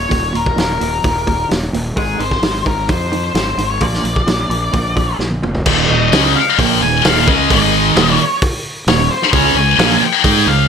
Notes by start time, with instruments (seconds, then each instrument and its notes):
Already playing: lead electric guitar C#5
0.09 fingered electric bass D#1, clean electric guitar D#2 A#2, kick, open hi-hat
0.33 fingered electric bass D#1, clean electric guitar D#2 A#2, lead electric guitar A#4, open hi-hat
0.46 kick
0.56 fingered electric bass D#1, clean electric guitar D#2 A#2, lead electric guitar A#4, snare, open hi-hat
0.80 fingered electric bass D#1, clean electric guitar D#2 A#2, open hi-hat
1.04 fingered electric bass D#1, clean electric guitar D#2 A#2, kick, open hi-hat
1.27 clean electric guitar D#2 A#2, kick, open hi-hat
1.49 fingered electric bass D#1, clean electric guitar D#2 A#2, snare, open hi-hat
1.73 fingered electric bass D#1, clean electric guitar D#2 A#2, open hi-hat
1.96 fingered electric bass G#1, clean electric guitar G#2 D#3 G#3, lead electric guitar G#4, kick, open hi-hat
2.19 fingered electric bass G#1, clean electric guitar G#2 D#3, lead electric guitar C5, open hi-hat
2.31 kick, snare
2.42 fingered electric bass G#1, clean electric guitar G#2 D#3, snare, open hi-hat
2.65 fingered electric bass G#1, clean electric guitar G#2 D#3, lead electric guitar A#4, kick, open hi-hat
2.88 fingered electric bass F2, clean electric guitar G#2 D#3, lead electric guitar C5, kick, open hi-hat
3.12 clean electric guitar G#2 D#3, open hi-hat
3.24 lead electric guitar C5
3.34 fingered electric bass G#1, clean electric guitar G#2 D#3, snare, open hi-hat
3.57 fingered electric bass G#1, clean electric guitar G#2 D#3, open hi-hat
3.70 lead electric guitar C#5
3.81 fingered electric bass A#1, clean electric guitar A#2 F3 A#3, lead electric guitar D5, kick, open hi-hat
3.93 snare
4.04 fingered electric bass A#1, clean electric guitar A#2 F3, open hi-hat
4.16 kick
4.26 fingered electric bass A#1, clean electric guitar A#2 F3, snare, open hi-hat
4.49 fingered electric bass A#1, clean electric guitar A#2 F3, open hi-hat
4.73 fingered electric bass A#1, clean electric guitar A#2 F3, kick, open hi-hat
4.96 clean electric guitar A#2 F3, kick, open hi-hat
5.19 fingered electric bass A#1, clean electric guitar A#2 F3, snare
5.31 high tom
5.42 fingered electric bass F1, clean electric guitar A#2 F3, mid tom
5.55 floor tom
5.66 fingered electric bass D#1, distorted electric guitar D#2 A#2 D#3, kick, crash
5.89 fingered electric bass D#1, distorted electric guitar D#2 A#2, lead electric guitar D#5
6.12 fingered electric bass C#2, distorted electric guitar C#3 G#3 C#4, snare, open hi-hat
6.36 lead electric guitar F5, muted fingered electric bass stroke, muted distorted electric guitar stroke, muted overdriven electric guitar stroke
6.58 fingered electric bass A#1, distorted electric guitar A#2 F3 A#3, lead electric guitar G5, kick, open hi-hat
6.81 fingered electric bass D#1, distorted electric guitar D#2 A#2, lead electric guitar G#5
7.04 fingered electric bass D#1, distorted electric guitar D#2 A#2 D#3, lead electric guitar F5, snare, open hi-hat
7.27 fingered electric bass C#2, distorted electric guitar C#3 G#3 C#4, lead electric guitar D#5, kick
7.50 fingered electric bass G#1, distorted electric guitar G#2 D#3 G#3, lead electric guitar D#5, kick, open hi-hat
7.95 fingered electric bass D#1, distorted electric guitar D#2 A#2 D#3, snare, open hi-hat
8.14 lead electric guitar C#5
8.42 kick, open hi-hat
8.87 fingered electric bass D#1, distorted electric guitar D#2 A#2, lead electric guitar C#5, snare, open hi-hat
9.11 lead electric guitar C5
9.22 snare
9.33 fingered electric bass C#2, distorted electric guitar C#3 G#3 C#4, lead electric guitar C#5, kick, open hi-hat
9.54 fingered electric bass C#2, distorted electric guitar C#3 G#3, lead electric guitar G#5
9.78 fingered electric bass A#1, distorted electric guitar A#2 F3 A#3, snare, open hi-hat
10.01 lead electric guitar G5, muted fingered electric bass stroke, muted distorted electric guitar stroke, muted overdriven electric guitar stroke
10.24 fingered electric bass G#2, distorted electric guitar G#3 D#4 G#4, kick, open hi-hat
10.46 fingered electric bass C#2, distorted electric guitar C#3 G#3, lead electric guitar F5